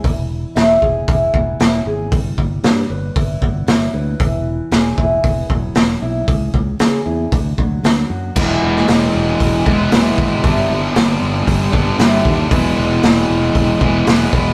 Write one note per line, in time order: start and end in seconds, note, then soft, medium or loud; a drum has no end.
0.00 2.68 E3 medium
0.00 1.34 B3 medium
0.00 1.08 E4 medium
0.00 0.55 E5 medium
0.04 0.44 E1 medium
0.04 kick medium
0.04 open hi-hat soft
0.55 0.76 E1 medium
0.55 2.64 E5 medium
0.55 snare medium
0.55 open hi-hat soft
0.81 1.02 E1 medium
0.81 1.86 G#4 medium
0.81 kick medium
1.08 1.28 E1 medium
1.08 1.60 E4 medium
1.08 kick medium
1.08 open hi-hat soft
1.34 1.54 E1 medium
1.34 3.40 B3 medium
1.34 kick medium
1.60 1.79 E1 medium
1.60 2.68 E4 medium
1.60 snare loud
1.60 open hi-hat soft
1.86 2.12 G#1 medium
1.86 2.12 G#4 medium
2.12 2.32 G1 medium
2.12 3.42 G3 medium
2.12 kick loud
2.12 open hi-hat soft
2.38 2.58 G1 medium
2.38 kick medium
2.64 2.83 G2 medium
2.64 3.94 D5 medium
2.64 snare loud
2.64 open hi-hat medium
2.90 3.09 G1 medium
2.90 3.93 B4 medium
3.16 3.36 G1 loud
3.16 3.67 E4 medium
3.16 kick loud
3.16 open hi-hat soft
3.41 3.62 G1 medium
3.41 5.24 B3 medium
3.41 kick medium
3.67 3.87 G1 medium
3.67 4.97 E4 medium
3.67 snare loud
3.67 open hi-hat medium
3.94 4.13 D2 medium
3.94 4.97 B4 medium
4.20 4.59 E1 medium
4.20 5.50 E3 medium
4.20 kick medium
4.20 open hi-hat soft
4.71 4.91 E1 medium
4.71 6.02 G#4 medium
4.71 snare medium
4.71 open hi-hat soft
4.97 5.18 E1 medium
4.97 6.01 E4 medium
4.97 kick medium
5.24 5.44 E1 medium
5.24 5.76 B3 medium
5.24 kick loud
5.24 open hi-hat soft
5.49 5.70 E1 medium
5.49 6.28 F#3 medium
5.49 kick medium
5.75 5.95 E1 medium
5.75 6.31 B3 medium
5.75 snare loud
5.75 open hi-hat medium
6.02 6.22 B1 medium
6.02 6.28 E4 medium
6.28 6.48 C#2 medium
6.28 7.31 C#3 medium
6.28 kick medium
6.28 open hi-hat soft
6.54 6.74 C#2 medium
6.54 kick medium
6.79 7.00 C#3 medium
6.79 7.32 G#4 medium
6.79 snare loud
6.79 open hi-hat medium
7.05 7.26 E2 medium
7.05 7.32 E4 medium
7.32 7.52 D2 medium
7.32 8.35 D3 medium
7.32 kick medium
7.32 open hi-hat soft
7.57 7.78 D2 medium
7.57 8.34 F#3 medium
7.57 kick medium
7.83 8.03 D2 medium
7.83 8.35 B3 medium
7.83 snare loud
7.83 open hi-hat medium
8.10 8.30 F#2 medium
8.10 8.36 F#4 medium
8.36 8.57 E1 medium
8.36 8.60 E3 medium
8.36 9.67 E3 medium
8.36 8.60 F#3 medium
8.36 9.65 G#3 medium
8.36 8.60 B3 medium
8.36 9.66 B3 medium
8.36 9.65 E4 loud
8.36 kick loud
8.36 crash loud
8.62 8.82 E1 medium
8.62 8.85 E3 medium
8.62 8.86 F#3 medium
8.76 snare soft
8.88 9.09 E1 medium
8.88 9.12 E3 medium
8.88 9.12 F#3 medium
8.88 snare loud
8.88 open hi-hat medium
9.15 9.35 E1 medium
9.15 9.38 E3 medium
9.15 9.38 F#3 medium
9.40 9.60 E1 loud
9.40 9.64 E3 medium
9.40 9.64 F#3 medium
9.40 kick medium
9.40 open hi-hat medium
9.65 9.87 E1 medium
9.65 9.89 E3 medium
9.65 9.90 E3 medium
9.65 9.90 F#3 medium
9.65 9.91 G#3 medium
9.65 9.92 B3 medium
9.65 9.93 E4 medium
9.65 kick medium
9.91 10.12 E1 medium
9.91 10.44 E3 medium
9.91 10.17 E3 medium
9.91 10.17 F#3 medium
9.91 10.42 G#3 medium
9.91 10.17 B3 loud
9.91 10.44 B3 medium
9.91 10.45 E4 medium
9.91 snare loud
9.91 open hi-hat medium
10.18 10.38 G#1 medium
10.18 10.41 E3 medium
10.18 10.42 F#3 medium
10.18 kick medium
10.43 10.64 G1 medium
10.43 11.72 G2 medium
10.43 11.72 D3 medium
10.43 10.68 G3 medium
10.43 11.72 G3 medium
10.43 11.73 B3 medium
10.43 10.69 B3 medium
10.43 11.72 D4 medium
10.43 10.69 E4 loud
10.43 kick loud
10.43 open hi-hat medium
10.69 10.90 G1 medium
10.69 10.93 G3 medium
10.69 10.94 B3 medium
10.96 11.16 G1 medium
10.96 11.19 G3 medium
10.96 11.19 B3 medium
10.96 snare loud
10.96 open hi-hat medium
11.22 11.42 G1 medium
11.22 11.45 G3 medium
11.22 11.45 B3 medium
11.47 11.68 G1 medium
11.47 11.71 G3 medium
11.47 11.71 B3 medium
11.47 kick medium
11.47 open hi-hat medium
11.73 11.94 G1 medium
11.73 11.98 G2 medium
11.73 11.98 D3 medium
11.73 11.97 G3 medium
11.73 11.98 G3 medium
11.73 12.00 B3 medium
11.73 11.97 B3 medium
11.73 11.98 D4 medium
11.73 kick medium
11.99 12.19 G1 medium
11.99 12.49 G2 medium
11.99 12.50 D3 medium
11.99 12.24 G3 medium
11.99 12.50 G3 medium
11.99 12.24 B3 medium
11.99 12.52 B3 medium
11.99 12.51 D4 medium
11.99 12.24 E4 medium
11.99 snare loud
11.99 open hi-hat medium
12.25 12.45 D#2 medium
12.25 12.49 G3 medium
12.25 12.49 B3 medium
12.25 kick medium
12.50 12.71 E1 medium
12.50 13.83 E3 medium
12.50 12.76 E3 medium
12.50 12.76 F#3 medium
12.50 13.82 G#3 loud
12.50 12.76 B3 loud
12.50 13.81 B3 medium
12.50 13.80 E4 loud
12.50 kick medium
12.50 open hi-hat medium
12.77 12.97 E1 medium
12.77 13.00 E3 medium
12.77 13.01 F#3 medium
13.03 13.23 E1 loud
13.03 13.27 F#3 medium
13.03 snare loud
13.03 open hi-hat medium
13.30 13.50 E1 medium
13.30 13.53 E3 medium
13.30 13.53 F#3 medium
13.55 13.75 E1 loud
13.55 13.79 E3 medium
13.55 13.79 F#3 medium
13.55 kick medium
13.55 open hi-hat soft
13.81 14.01 E1 medium
13.81 14.05 E3 medium
13.81 14.06 E3 medium
13.81 14.05 F#3 medium
13.81 14.07 G#3 medium
13.81 14.08 B3 medium
13.81 14.08 E4 loud
13.81 kick medium
14.07 14.27 E1 medium
14.07 14.54 E3 medium
14.07 14.31 E3 medium
14.07 14.32 F#3 medium
14.07 14.54 G#3 medium
14.07 14.32 B3 loud
14.07 14.54 B3 loud
14.07 14.54 E4 medium
14.07 snare loud
14.07 open hi-hat medium
14.33 14.53 E1 medium
14.33 14.54 E3 medium
14.33 14.54 F#3 medium
14.33 kick medium